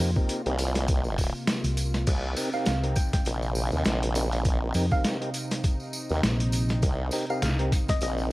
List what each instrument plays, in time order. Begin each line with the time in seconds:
Already playing: analog synth pad C3 A#3 F4
0.00 fingered electric bass F2, tonewheel organ C4 D#4 G4 A#4
0.16 tonewheel organ C4 D#4 G4 A#4, kick, tambourine
0.29 closed hi-hat, tambourine
0.46 wobble bass C2, tonewheel organ C4 D#4 G4 A#4, closed hi-hat
0.58 closed hi-hat, tambourine
0.75 snare, closed hi-hat, tambourine
0.88 kick, closed hi-hat, tambourine
1.04 tambourine
1.18 kick, open hi-hat, tambourine
1.35 tambourine
1.47 snare, closed hi-hat, tambourine
1.64 fingered electric bass C2, closed hi-hat, tambourine
1.77 closed hi-hat, tambourine
1.94 snare, closed hi-hat, tambourine
2.07 wobble bass C2, analog synth pad C4 D#4, kick, closed hi-hat, crash, tambourine
2.36 tonewheel organ C4 D#4 G4 A#4, open hi-hat, tambourine
2.53 tonewheel organ C4 D#4 G4 A#4, synth pluck F5, tambourine
2.65 fingered electric bass C2, synth pluck F5, snare, closed hi-hat, tambourine
2.83 tonewheel organ C4 D#4 G4 A#4, closed hi-hat
2.96 synth pluck G5, kick, closed hi-hat, tambourine
3.13 synth pluck G5, kick, snare, closed hi-hat, tambourine
3.25 wobble bass A#1, closed hi-hat, tambourine
3.42 tambourine
3.55 tambourine
3.72 wobble bass D#2, tambourine
3.84 wobble bass A#1, snare, closed hi-hat, tambourine
4.03 closed hi-hat
4.15 tonewheel organ C4 D#4 G4 A#4, closed hi-hat, tambourine
4.32 closed hi-hat, tambourine
4.45 kick, closed hi-hat, tambourine
4.74 fingered electric bass F2, tonewheel organ C4 D#4 G4 A#4, open hi-hat, tambourine
4.91 tonewheel organ C4 D#4 G4 A#4, synth pluck F5, kick, tambourine
5.04 snare, closed hi-hat, tambourine
5.21 tonewheel organ C4 D#4 G4 A#4, closed hi-hat
5.34 closed hi-hat, tambourine
5.51 snare, closed hi-hat, tambourine
5.64 kick, closed hi-hat, tambourine
5.80 tambourine
5.93 tambourine
6.09 wobble bass D#2, tambourine
6.23 fingered electric bass A#1, snare, closed hi-hat, tambourine
6.40 closed hi-hat
6.52 closed hi-hat, tambourine
6.69 snare, closed hi-hat, tambourine
6.82 wobble bass C2, kick, closed hi-hat, tambourine
7.11 tonewheel organ C4 D#4 G4 A#4, open hi-hat, tambourine
7.15 open hi-hat
7.18 open hi-hat
7.21 open hi-hat
7.23 open hi-hat
7.27 tonewheel organ C4 D#4 G4 A#4, synth pluck F5, open hi-hat, tambourine
7.42 fingered electric bass C2, synth pluck F5, snare, closed hi-hat, tambourine
7.59 tonewheel organ C4 D#4 G4 A#4, closed hi-hat
7.72 kick, closed hi-hat, tambourine
7.88 synth pluck D#5, kick, snare, closed hi-hat, tambourine
8.01 wobble bass A#1, synth pluck D#5, closed hi-hat, tambourine
8.18 tambourine